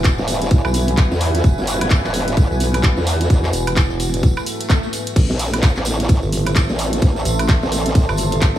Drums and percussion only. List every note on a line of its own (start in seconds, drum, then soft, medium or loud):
0.04 kick loud
0.04 clap loud
0.04 closed hi-hat medium
0.04 tambourine soft
0.18 tambourine soft
0.28 open hi-hat loud
0.28 tambourine medium
0.42 closed hi-hat medium
0.42 tambourine soft
0.51 kick loud
0.51 closed hi-hat medium
0.51 tambourine medium
0.65 tambourine soft
0.65 high woodblock medium
0.74 open hi-hat loud
0.74 tambourine medium
0.88 closed hi-hat medium
0.88 tambourine soft
0.97 kick loud
0.97 clap loud
0.97 closed hi-hat medium
0.97 tambourine soft
1.11 tambourine soft
1.21 open hi-hat loud
1.21 tambourine medium
1.35 closed hi-hat medium
1.35 tambourine soft
1.44 kick loud
1.44 closed hi-hat medium
1.44 tambourine medium
1.58 tambourine soft
1.67 open hi-hat loud
1.67 tambourine medium
1.81 closed hi-hat medium
1.81 tambourine soft
1.81 high woodblock medium
1.90 kick loud
1.90 clap loud
1.90 closed hi-hat medium
1.90 tambourine medium
2.04 clap soft
2.04 tambourine soft
2.14 open hi-hat loud
2.14 tambourine medium
2.28 closed hi-hat medium
2.28 tambourine soft
2.37 kick loud
2.37 closed hi-hat medium
2.37 tambourine medium
2.52 tambourine soft
2.60 open hi-hat loud
2.60 tambourine medium
2.74 closed hi-hat medium
2.74 tambourine soft
2.74 high woodblock medium
2.83 kick loud
2.83 clap loud
2.83 closed hi-hat medium
2.83 tambourine soft
2.97 tambourine soft
3.07 open hi-hat loud
3.07 tambourine medium
3.21 closed hi-hat medium
3.21 tambourine soft
3.30 kick loud
3.30 closed hi-hat medium
3.30 tambourine medium
3.44 clap soft
3.44 tambourine soft
3.53 open hi-hat loud
3.53 tambourine medium
3.67 closed hi-hat medium
3.67 tambourine soft
3.67 high woodblock medium
3.76 kick loud
3.76 clap loud
3.76 closed hi-hat medium
3.76 tambourine medium
3.90 tambourine soft
4.00 open hi-hat loud
4.00 tambourine medium
4.14 closed hi-hat medium
4.14 tambourine soft
4.23 kick loud
4.23 closed hi-hat medium
4.23 tambourine medium
4.37 tambourine soft
4.37 high woodblock medium
4.46 open hi-hat loud
4.46 tambourine medium
4.60 closed hi-hat medium
4.60 tambourine soft
4.70 kick loud
4.70 clap loud
4.70 closed hi-hat medium
4.70 tambourine medium
4.83 tambourine soft
4.93 open hi-hat loud
4.93 tambourine loud
5.06 closed hi-hat medium
5.06 tambourine soft
5.16 kick loud
5.16 closed hi-hat medium
5.16 crash medium
5.16 ride medium
5.16 tambourine soft
5.30 tambourine soft
5.39 open hi-hat loud
5.39 tambourine medium
5.53 closed hi-hat medium
5.53 tambourine soft
5.53 high woodblock medium
5.63 kick loud
5.63 clap loud
5.63 closed hi-hat medium
5.63 ride medium
5.63 tambourine soft
5.76 clap soft
5.76 tambourine soft
5.85 open hi-hat loud
5.85 tambourine loud
6.00 closed hi-hat medium
6.00 tambourine soft
6.09 kick loud
6.09 closed hi-hat medium
6.09 ride medium
6.09 tambourine soft
6.23 tambourine soft
6.32 open hi-hat loud
6.32 tambourine medium
6.46 closed hi-hat medium
6.46 tambourine soft
6.46 high woodblock medium
6.56 kick loud
6.56 clap loud
6.56 closed hi-hat medium
6.56 ride medium
6.56 tambourine medium
6.69 tambourine soft
6.79 open hi-hat loud
6.79 tambourine loud
6.93 closed hi-hat medium
6.93 tambourine soft
7.02 kick loud
7.02 closed hi-hat medium
7.02 ride medium
7.02 tambourine medium
7.16 tambourine soft
7.25 open hi-hat loud
7.25 tambourine loud
7.39 closed hi-hat medium
7.39 tambourine soft
7.39 high woodblock medium
7.49 kick loud
7.49 clap loud
7.49 closed hi-hat medium
7.49 ride medium
7.49 tambourine medium
7.63 tambourine soft
7.72 open hi-hat loud
7.72 tambourine loud
7.86 closed hi-hat medium
7.86 tambourine soft
7.95 kick loud
7.95 closed hi-hat medium
7.95 ride medium
7.95 tambourine medium
8.09 tambourine soft
8.09 high woodblock medium
8.17 open hi-hat loud
8.17 tambourine medium
8.32 closed hi-hat medium
8.32 tambourine soft
8.41 kick loud
8.41 clap loud
8.41 closed hi-hat medium
8.41 ride medium
8.41 tambourine medium